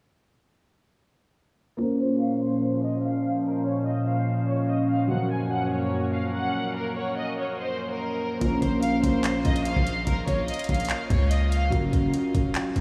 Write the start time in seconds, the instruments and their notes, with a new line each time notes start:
1.77 ambient pad A#2 F3 C#4 C5, grand piano A#3 F4 C5, violin section A#4
1.81 grand piano C#4
2.00 violin section C5
2.21 violin section F5
2.41 violin section C5
2.83 violin section D#5
3.03 violin section F5
3.45 violin section A#4
3.65 violin section C#5
3.86 violin section D#5
4.07 violin section F5
4.48 violin section C#5
4.69 violin section D#5
4.90 violin section F5
5.07 ambient pad F#2 A#3 C#4 A#4, grand piano F3 F#3 C#4, violin section F#5
5.12 grand piano A#4
5.31 violin section G#5
5.52 violin section F#5
5.72 violin section C#5
6.13 violin section F5
6.34 violin section F#5
6.76 violin section A#4
6.97 violin section C#5
7.17 violin section D#5
7.39 violin section C#5
7.58 violin section C5
7.90 violin section A#4
8.40 808-style bass A#1, grand piano A#3 F4 C5, violin section A#4, kick, closed hi-hat
8.44 grand piano C#4
8.62 808-style bass A#1, violin section C5, kick, closed hi-hat
8.83 violin section F5, closed hi-hat
9.03 808-style bass A#1, violin section C5, kick, closed hi-hat
9.24 clap, closed hi-hat
9.45 808-style bass A#1, violin section D#5, closed hi-hat
9.56 closed hi-hat
9.65 violin section F5, closed hi-hat
9.76 808-style bass A#1, kick
9.87 closed hi-hat
10.07 808-style bass A#1, violin section A#4, kick, closed hi-hat
10.27 808-style bass A#1, violin section C#5, kick, closed hi-hat
10.48 violin section D#5, closed hi-hat
10.54 closed hi-hat
10.59 closed hi-hat
10.64 closed hi-hat
10.69 808-style bass A#1, violin section F5, kick, closed hi-hat
10.74 closed hi-hat
10.80 closed hi-hat
10.85 closed hi-hat
10.89 clap, closed hi-hat
11.10 808-style bass C#2, violin section C#5, kick, closed hi-hat
11.31 violin section D#5, closed hi-hat
11.52 violin section F5, closed hi-hat
11.70 808-style bass F#1, grand piano F#3 C#4 F4, kick, closed hi-hat
11.74 grand piano A#4
11.93 808-style bass F#1, kick, closed hi-hat
12.14 closed hi-hat
12.35 808-style bass F1, kick, closed hi-hat
12.55 clap, closed hi-hat
12.76 808-style bass F#1, closed hi-hat